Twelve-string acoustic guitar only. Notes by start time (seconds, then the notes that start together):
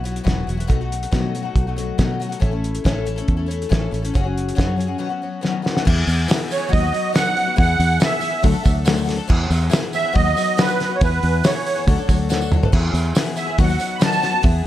0.04 F#3 B3 E4 F#4
0.24 E3 F#3 B3 E4 F#4
0.47 F#3 B3 E4 F#4
0.57 B3 E4 F#4
0.67 B2 D#3 F#3 A3 D#4 F#4
0.81 F#3 A3 D#4 F#4
1.11 B2 D#3 F#3 A3 D#4 F#4
1.34 F#3 A3 D#4 F#4
1.42 F#3 A3 D#4 F#4
1.67 F#3 A3 D#4 F#4
1.76 F#3 A3 D#4 F#4
1.98 B2 D#3 F#3 A3 D#4 F#4
2.19 F#3 A3 D#4 F#4
2.29 F#3 A3 D#4 F#4
2.40 A2 E3 A3 C#4 E4 A4
2.51 A3 C#4 E4 A4
2.84 A2 E3 A3 C#4 E4 A4
3.05 A3 C#4 E4 A4
3.16 A3 C#4 E4 A4
3.37 A3 C#4 E4 A4
3.46 A3 C#4 E4 A4
3.69 A2 E3 A3 C#4 E4 A4
3.91 A3 C#4 E4 A4
4.02 A3 C#4 E4 A4
4.14 F#2 C#3 F#3 C#4 F#4 G#4
4.23 F#3 C#4 F#4 G#4
4.55 F#2 C#3 F#3 C#4 F#4 G#4
4.76 F#3 C#4 F#4 G#4
4.87 F#3 C#4 F#4 G#4
4.98 B2 D#3 F#3 B3 C#4 F#4
5.09 F#3 B3 C#4 F#4
5.22 F#3 B3 C#4 F#4
5.41 B2 D#3 F#3 B3 C#4 F#4
5.62 F#3 B3 C#4 F#4
5.75 F#3 B3 C#4 F#4
5.85 E3 B3 E4 G#4
6.28 E3 B3 E4 G#4
6.40 B3 E4 G#4
6.50 E3 B3 E4 G#4
6.58 B3 E4 G#4
6.68 D#3 F#3 B3 D#4 F#4
6.80 B3 D#4 F#4
6.92 F#3 B3 D#4 F#4
7.13 D#3 F#3 B3 D#4 F#4
7.35 F#3 B3 D#4 F#4
7.46 B3 D#4 F#4
7.56 E3 B3 E4 G#4
8.00 E3 B3 E4 G#4
8.10 B3 E4 G#4
8.20 E3 B3 E4 G#4
8.30 B3 E4 G#4
8.42 D3 F#3 A3 D4 A4
8.52 A3 D4 A4
8.62 F#3 A3 D4 A4
8.85 D3 F#3 A3 D4 A4
9.04 F#3 A3 D4 A4
9.16 A3 D4 A4
9.28 E3 B3 E4 G#4
9.70 E3 B3 E4 G#4
9.81 B3 E4 G#4
9.93 E3 B3 E4 G#4
10.03 B3 E4 G#4
10.12 D#3 F#3 B3 D#4 F#4
10.24 B3 D#4 F#4
10.35 F#3 B3 D#4 F#4
10.57 D#3 F#3 B3 D#4 F#4
10.79 F#3 B3 D#4 F#4
10.89 B3 D#4 F#4
11.01 E3 B3 E4 G#4
11.43 E3 B3 E4 G#4
11.55 B3 E4 G#4
11.65 E3 B3 E4 G#4
11.76 B3 E4 G#4
11.87 D3 F#3 A3 D4 A4
11.98 A3 D4 A4
12.08 F#3 A3 D4 A4
12.29 D3 F#3 A3 D4 A4
12.52 F#3 A3 D4 A4
12.63 A3 D4 A4
12.72 E3 B3 E4 G#4
13.16 E3 B3 E4 G#4
13.26 B3 E4 G#4
13.36 E3 B3 E4 G#4
13.46 B3 E4 G#4
13.59 D#3 F#3 B3 D#4 F#4
13.68 B3 D#4 F#4
13.79 F#3 B3 D#4 F#4
13.99 D#3 F#3 B3 D#4 F#4
14.21 F#3 B3 D#4 F#4
14.31 B3 D#4 F#4
14.42 E3 B3 E4 G#4